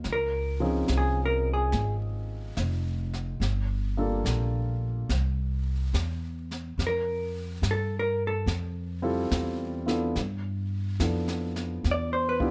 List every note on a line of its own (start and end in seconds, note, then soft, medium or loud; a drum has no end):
0.04 0.86 C#2 medium
0.04 brush sweep soft
0.04 snare soft
0.13 0.88 A#4 medium
0.60 0.85 F3 soft
0.60 0.86 C4 soft
0.60 0.86 C#4 soft
0.60 0.86 D#4 soft
0.60 0.86 G#4 medium
0.88 1.70 C2 medium
0.88 snare soft
0.88 hi-hat pedal soft
0.97 1.20 G#4 medium
1.25 1.48 A#4 medium
1.53 1.94 G#4 medium
1.72 2.54 G#1 medium
1.72 brush sweep soft
1.72 snare soft
2.57 3.38 F1 medium
2.57 snare soft
2.57 hi-hat pedal soft
3.13 snare soft
3.40 4.22 G1 medium
3.40 brush sweep soft
3.40 snare soft
3.97 4.22 G3 soft
3.97 4.22 A#3 soft
3.97 4.23 D4 soft
3.97 4.23 F4 soft
3.97 4.23 A4 medium
4.25 5.07 A#1 medium
4.25 snare soft
4.25 hi-hat pedal soft
5.09 5.91 C2 medium
5.09 brush sweep soft
5.09 snare soft
5.93 6.76 E2 medium
5.93 snare soft
5.93 hi-hat pedal soft
6.51 snare soft
6.78 7.60 F2 medium
6.78 brush sweep soft
6.78 snare soft
6.87 7.63 A#4 medium
7.62 8.44 G2 medium
7.62 snare soft
7.62 hi-hat pedal soft
7.71 7.94 A4 medium
7.99 8.23 A#4 medium
8.27 8.53 A4 medium
8.46 9.28 F2 medium
8.46 brush sweep soft
8.46 snare soft
9.02 9.28 G3 medium
9.02 9.28 C4 soft
9.02 9.28 E4 soft
9.02 9.29 F4 medium
9.02 9.29 A4 medium
9.31 10.13 E2 medium
9.31 snare soft
9.31 hi-hat pedal soft
9.86 10.12 B3 soft
9.86 10.13 D4 soft
9.86 10.13 E4 soft
9.86 10.12 F4 soft
9.86 10.13 A4 soft
9.86 snare soft
10.16 10.98 G2 medium
10.16 brush sweep soft
10.16 snare soft
11.00 11.82 F2 medium
11.00 11.51 F3 soft
11.00 11.51 B3 soft
11.00 11.51 D4 soft
11.00 11.51 E4 soft
11.00 11.51 A4 soft
11.00 snare soft
11.00 hi-hat pedal soft
11.28 snare soft
11.56 snare soft
11.84 12.51 E2 medium
11.84 brush sweep soft
11.84 snare soft
11.91 12.12 D5 medium
12.13 12.40 C5 medium
12.29 12.48 B4 medium
12.40 12.51 B3 medium
12.40 12.51 D4 medium
12.40 12.51 E4 medium
12.40 12.51 F4 medium
12.40 12.51 G4 medium
12.40 kick soft